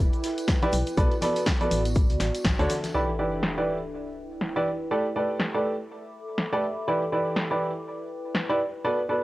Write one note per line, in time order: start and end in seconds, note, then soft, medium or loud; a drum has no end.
0.00 1.22 E4 medium
0.00 1.22 B4 medium
0.13 closed hi-hat soft
0.13 tambourine soft
0.13 shaker soft
0.24 snare soft
0.24 open hi-hat loud
0.24 shaker medium
0.38 closed hi-hat medium
0.38 tambourine medium
0.38 shaker soft
0.48 kick loud
0.48 snare loud
0.48 closed hi-hat medium
0.48 tambourine medium
0.48 shaker soft
0.48 shaker medium
0.62 0.72 E4 medium
0.62 0.72 G4 medium
0.62 0.72 B4 medium
0.62 0.72 D5 loud
0.62 closed hi-hat soft
0.62 tambourine soft
0.62 high conga medium
0.72 0.83 B1 medium
0.72 2.37 B3 medium
0.72 open hi-hat loud
0.72 shaker medium
0.86 closed hi-hat medium
0.86 tambourine medium
0.86 shaker soft
0.98 1.08 B1 loud
0.98 1.12 B3 medium
0.98 1.12 F#4 medium
0.98 1.12 A4 medium
0.98 1.12 B4 medium
0.98 1.12 D5 loud
0.98 kick loud
0.98 closed hi-hat medium
0.98 tambourine medium
0.98 shaker medium
0.98 shaker soft
1.04 2.37 F#4 medium
1.12 closed hi-hat soft
1.12 tambourine soft
1.21 1.57 B3 medium
1.21 1.57 F#4 medium
1.21 1.57 A4 medium
1.21 1.57 B4 medium
1.21 1.57 D5 medium
1.21 snare soft
1.21 open hi-hat loud
1.21 high conga medium
1.21 shaker medium
1.36 closed hi-hat medium
1.36 closed hi-hat soft
1.36 tambourine medium
1.36 shaker soft
1.46 kick medium
1.46 snare loud
1.46 closed hi-hat medium
1.46 tambourine medium
1.46 shaker loud
1.46 shaker soft
1.61 1.80 B3 medium
1.61 1.80 F#4 medium
1.61 1.80 A4 medium
1.61 1.80 B4 medium
1.61 1.80 D5 medium
1.61 closed hi-hat soft
1.61 tambourine soft
1.61 high conga medium
1.61 shaker soft
1.71 2.11 A1 medium
1.71 open hi-hat loud
1.71 shaker medium
1.85 closed hi-hat medium
1.85 tambourine medium
1.85 shaker soft
1.95 3.74 D4 medium
1.95 kick loud
1.95 closed hi-hat medium
1.95 tambourine medium
1.95 shaker medium
1.95 shaker soft
2.10 2.18 D2 loud
2.10 3.74 A4 medium
2.10 closed hi-hat soft
2.10 tambourine soft
2.10 shaker soft
2.20 2.31 A1 medium
2.20 snare medium
2.20 open hi-hat loud
2.20 shaker medium
2.35 closed hi-hat medium
2.35 tambourine medium
2.35 shaker soft
2.41 2.55 A1 medium
2.41 3.74 E5 medium
2.41 kick loud
2.41 snare loud
2.41 closed hi-hat medium
2.41 tambourine medium
2.45 shaker soft
2.45 shaker medium
2.59 2.67 D2 medium
2.59 2.70 D3 medium
2.59 2.70 F#4 medium
2.59 2.70 A4 medium
2.59 2.70 C#5 medium
2.59 2.70 D5 loud
2.59 closed hi-hat soft
2.59 tambourine soft
2.59 shaker soft
2.70 snare soft
2.70 open hi-hat loud
2.70 high conga medium
2.70 shaker medium
2.83 snare soft
2.83 closed hi-hat medium
2.83 tambourine medium
2.83 high conga medium
2.83 shaker soft
2.94 3.09 E3 medium
2.94 5.70 E4 medium
2.94 3.09 E4 medium
2.94 3.09 G4 medium
2.94 3.09 B4 medium
2.94 3.09 D5 medium
2.94 sub drop medium
3.19 3.54 E3 medium
3.19 3.54 E4 medium
3.19 3.54 G4 medium
3.19 3.54 B4 medium
3.19 3.54 D5 medium
3.43 snare loud
3.58 3.77 E3 medium
3.58 3.77 E4 medium
3.58 3.77 G4 medium
3.58 3.77 B4 medium
3.58 3.77 D5 medium
3.70 5.70 B4 medium
3.84 5.70 G5 medium
4.41 snare loud
4.56 4.67 E3 medium
4.56 4.67 E4 medium
4.56 4.67 G4 medium
4.56 4.67 B4 medium
4.56 4.67 D5 medium
4.91 5.05 A3 medium
4.91 5.05 G4 medium
4.91 7.57 A4 medium
4.91 5.05 A4 medium
4.91 5.05 B4 medium
4.91 5.05 D5 medium
5.10 7.57 E5 medium
5.16 5.51 A3 medium
5.16 5.51 G4 medium
5.16 5.51 A4 medium
5.16 5.51 B4 medium
5.16 5.51 D5 medium
5.22 7.57 D6 medium
5.38 7.57 B5 medium
5.38 snare loud
5.54 5.74 A3 medium
5.54 5.74 G4 medium
5.54 5.74 A4 medium
5.54 5.74 B4 medium
5.54 5.74 D5 medium
6.38 snare loud
6.53 6.63 A3 medium
6.53 6.63 G4 medium
6.53 6.63 A4 medium
6.53 6.63 B4 medium
6.53 6.63 D5 medium
6.88 7.02 E3 medium
6.88 9.24 E4 medium
6.88 7.02 E4 medium
6.88 7.02 G4 medium
6.88 7.02 B4 medium
6.88 7.02 D5 medium
7.12 7.48 E3 medium
7.12 7.48 E4 medium
7.12 7.48 G4 medium
7.12 7.48 B4 medium
7.12 7.48 D5 medium
7.33 9.24 B4 medium
7.33 snare loud
7.51 7.70 E3 medium
7.51 7.70 E4 medium
7.51 7.70 G4 medium
7.51 7.70 B4 medium
7.51 7.70 D5 medium
8.35 snare loud
8.49 8.59 E4 medium
8.49 8.59 G4 medium
8.49 8.59 B4 medium
8.49 8.59 D5 medium
8.60 9.24 B3 medium
8.84 8.99 B3 medium
8.84 8.99 F#4 medium
8.84 8.99 A4 medium
8.84 8.99 B4 medium
8.84 8.99 D5 medium
9.09 9.24 B3 medium
9.09 9.24 F#4 medium
9.09 9.24 A4 medium
9.09 9.24 B4 medium
9.09 9.24 D5 medium